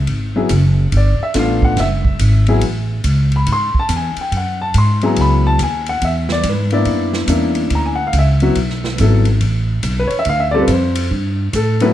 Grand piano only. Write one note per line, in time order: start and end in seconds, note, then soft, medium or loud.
0.36 0.49 F#3 medium
0.36 0.49 B3 medium
0.36 0.50 E4 medium
0.36 0.50 G#4 medium
0.97 1.22 D5 medium
1.23 1.36 E5 loud
1.35 1.77 A3 medium
1.35 1.78 B3 medium
1.35 1.78 D4 medium
1.35 1.78 F4 medium
1.39 1.64 F5 loud
1.65 1.78 F#5 loud
1.80 2.45 E5 loud
2.48 2.61 F#3 medium
2.48 2.62 B3 medium
2.48 2.62 E4 medium
2.48 2.62 G#4 loud
3.36 3.49 B5 medium
3.52 3.77 C6 loud
3.79 3.92 A5 loud
3.96 4.20 G#5 medium
4.21 4.34 G5 medium
4.37 4.62 F#5 medium
4.61 4.75 A5 medium
4.78 5.03 C6 loud
5.03 5.57 F#3 medium
5.03 5.57 B3 medium
5.03 5.57 E4 medium
5.03 5.57 G#4 medium
5.03 5.19 A#5 medium
5.21 5.46 B5 loud
5.47 5.60 A5 loud
5.63 5.88 G#5 medium
5.89 6.03 F#5 loud
6.05 6.30 E5 medium
6.32 6.46 D5 loud
6.49 6.74 B4 medium
6.72 7.27 A#3 medium
6.72 7.27 B3 medium
6.72 7.27 D4 medium
6.72 7.27 E4 medium
6.72 7.12 D5 medium
7.29 7.94 A#3 medium
7.29 7.94 C#4 medium
7.29 7.94 D4 medium
7.29 7.94 E4 medium
7.75 7.87 A#5 medium
7.86 7.99 G#5 medium
7.95 8.05 F#5 loud
8.07 8.14 F5 medium
8.19 8.97 E5 medium
8.42 8.56 F#3 medium
8.42 8.56 B3 medium
8.42 8.56 E4 medium
8.42 8.56 F#4 medium
9.00 9.25 F#3 medium
9.00 9.25 B3 medium
9.00 9.25 E4 medium
9.00 9.25 A4 medium
9.99 10.12 B4 loud
10.07 10.17 C#5 medium
10.19 10.26 E5 loud
10.29 10.41 F5 loud
10.40 10.54 E5 medium
10.51 10.68 G3 loud
10.51 10.68 C4 medium
10.51 10.68 F4 medium
10.51 10.68 A4 medium
10.51 10.60 D5 loud
10.62 10.69 B4 medium
10.73 11.11 C5 medium
11.55 11.83 A4 loud
11.81 11.93 A2 medium
11.81 11.93 F#3 medium
11.81 11.93 B3 medium
11.81 11.93 E4 medium
11.81 11.87 B4 loud